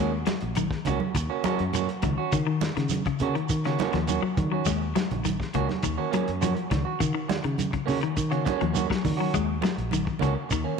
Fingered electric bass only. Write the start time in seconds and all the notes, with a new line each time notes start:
Already playing: D#2
0.42 A#1
0.87 C#2
1.15 D#2
1.45 muted fingered electric bass stroke
1.60 F#2
2.03 C#2
2.33 D#3
2.77 C#3
3.21 C#3
3.50 D#3
3.94 D#2
4.23 muted fingered electric bass stroke
4.37 D#3
4.67 D#2
5.11 A#1
5.55 C#2
5.83 D#2
6.14 muted fingered electric bass stroke
6.28 F#2
6.71 C#2
7.01 D#3
7.45 C#3
7.89 C#3
8.17 D#3
8.62 D#2
8.90 muted fingered electric bass stroke
9.05 D#3
9.34 D#2
9.78 A#1
10.21 C#2
10.51 D#2